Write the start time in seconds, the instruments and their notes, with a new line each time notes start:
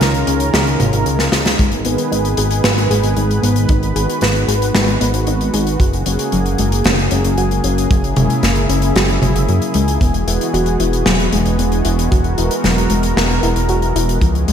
Already playing: analog synth pad D#3 G#3 C#4 F4 A#4
0.01 analog synth bass C#2, snare, closed hi-hat
0.14 closed hi-hat
0.27 analog synth bass C#2, closed hi-hat
0.40 closed hi-hat
0.54 analog synth bass C#2, snare, closed hi-hat
0.67 closed hi-hat
0.80 analog synth bass G#1, closed hi-hat, mid tom
0.93 analog synth bass G#1, closed hi-hat
1.06 analog synth bass C#2, closed hi-hat
1.19 snare, closed hi-hat
1.32 analog synth bass C#2, snare, closed hi-hat
1.46 snare, closed hi-hat
1.59 analog synth bass G#1, analog synth pad D#3 B3 G#4 B4, synth arpeggio sound G#3, kick, closed hi-hat
1.72 closed hi-hat
1.85 analog synth bass G#1, synth arpeggio sound B3, closed hi-hat
1.98 closed hi-hat
2.12 analog synth bass G#1, synth arpeggio sound D#4, closed hi-hat
2.25 closed hi-hat
2.37 analog synth bass G#1, synth arpeggio sound G#4, closed hi-hat
2.51 closed hi-hat
2.64 analog synth bass G#1, synth arpeggio sound B4, snare, closed hi-hat
2.78 closed hi-hat
2.90 analog synth bass G#1, synth arpeggio sound G#4, closed hi-hat
3.03 analog synth bass G#1, closed hi-hat
3.16 analog synth bass G#1, synth arpeggio sound G#3, closed hi-hat
3.31 closed hi-hat
3.43 analog synth bass G#1, synth arpeggio sound B3, closed hi-hat
3.56 closed hi-hat
3.69 analog synth bass G#1, synth arpeggio sound D#4, analog synth pad F#4, kick, closed hi-hat
3.83 closed hi-hat
3.95 analog synth bass G#1, synth arpeggio sound G#4, closed hi-hat
4.10 closed hi-hat
4.21 analog synth bass G#1, synth arpeggio sound B4, snare, closed hi-hat
4.35 closed hi-hat
4.48 analog synth bass G#1, synth arpeggio sound G#4, closed hi-hat
4.62 closed hi-hat
4.74 analog synth bass G#1, synth arpeggio sound G#3, snare, closed hi-hat
4.88 closed hi-hat
5.01 analog synth bass G#1, synth arpeggio sound B3, closed hi-hat
5.14 analog synth bass G#1, closed hi-hat
5.27 analog synth bass G#1, synth arpeggio sound D#4, closed hi-hat
5.41 closed hi-hat
5.54 analog synth bass G#1, synth arpeggio sound G#4, closed hi-hat
5.67 closed hi-hat
5.80 analog synth bass F#1, analog synth pad C#3 A#3 G#4, synth arpeggio sound F#4, kick, closed hi-hat
5.93 closed hi-hat
6.06 analog synth bass F#1, synth arpeggio sound C#4, closed hi-hat
6.19 closed hi-hat
6.32 analog synth bass F#1, synth arpeggio sound F#3, closed hi-hat
6.46 closed hi-hat
6.58 analog synth bass F#1, synth arpeggio sound G#3, closed hi-hat
6.72 closed hi-hat
6.84 analog synth bass F#1, synth arpeggio sound A#3, snare, closed hi-hat
6.99 closed hi-hat
7.11 analog synth bass F#1, synth arpeggio sound C#4, closed hi-hat
7.24 analog synth bass F#1, closed hi-hat
7.38 analog synth bass F#1, synth arpeggio sound F#4, closed hi-hat
7.51 closed hi-hat
7.64 analog synth bass F#1, synth arpeggio sound C#4, closed hi-hat
7.78 closed hi-hat
7.90 analog synth bass F#1, synth arpeggio sound F#3, analog synth pad E4, kick, closed hi-hat
8.04 closed hi-hat
8.16 analog synth bass F#1, synth arpeggio sound G#3, closed hi-hat, mid tom
8.30 closed hi-hat
8.43 analog synth bass F#1, synth arpeggio sound A#3, snare, closed hi-hat
8.55 closed hi-hat
8.69 analog synth bass F#1, synth arpeggio sound C#4, closed hi-hat
8.82 closed hi-hat
8.96 analog synth bass F#1, synth arpeggio sound F#4, snare, closed hi-hat
9.09 closed hi-hat
9.22 analog synth bass F#1, synth arpeggio sound C#4, closed hi-hat, mid tom
9.35 analog synth bass F#1, closed hi-hat
9.48 analog synth bass F#2, synth arpeggio sound F#3, closed hi-hat
9.62 closed hi-hat
9.74 analog synth bass C#2, synth arpeggio sound G#3, closed hi-hat
9.88 closed hi-hat
10.01 analog synth bass E1, analog synth pad E3 G#3 B3 F#4, synth arpeggio sound B3, kick, closed hi-hat
10.14 closed hi-hat
10.27 analog synth bass E1, synth arpeggio sound E4, closed hi-hat
10.41 closed hi-hat
10.54 analog synth bass E1, synth arpeggio sound F#4, closed hi-hat
10.66 closed hi-hat
10.80 analog synth bass E1, synth arpeggio sound E4, closed hi-hat
10.93 closed hi-hat
11.06 analog synth bass E1, synth arpeggio sound F#3, snare, closed hi-hat
11.20 closed hi-hat
11.33 analog synth bass E1, synth arpeggio sound G#3, closed hi-hat
11.46 analog synth bass E1, closed hi-hat
11.59 analog synth bass E1, synth arpeggio sound B3, closed hi-hat
11.72 closed hi-hat
11.85 analog synth bass E1, synth arpeggio sound E4, closed hi-hat
11.99 closed hi-hat
12.11 analog synth bass E1, synth arpeggio sound F#4, analog synth pad A#4, kick, closed hi-hat
12.24 closed hi-hat
12.38 analog synth bass E1, synth arpeggio sound E4, closed hi-hat
12.51 closed hi-hat
12.64 analog synth bass E1, synth arpeggio sound F#3, snare, closed hi-hat
12.78 closed hi-hat
12.90 analog synth bass E1, synth arpeggio sound G#3, closed hi-hat
13.03 closed hi-hat
13.17 analog synth bass E1, synth arpeggio sound B3, snare, closed hi-hat
13.30 closed hi-hat
13.43 analog synth bass E1, synth arpeggio sound E4, closed hi-hat
13.56 analog synth bass E1, closed hi-hat
13.69 analog synth bass E1, synth arpeggio sound F#4, closed hi-hat
13.82 closed hi-hat
13.95 analog synth bass E1, synth arpeggio sound E4, closed hi-hat
14.09 closed hi-hat
14.21 analog synth bass C#2, analog synth pad D#3 C#4 F4 G#4, synth arpeggio sound F3, kick, closed hi-hat
14.35 closed hi-hat
14.48 analog synth bass C#2, synth arpeggio sound G#3, closed hi-hat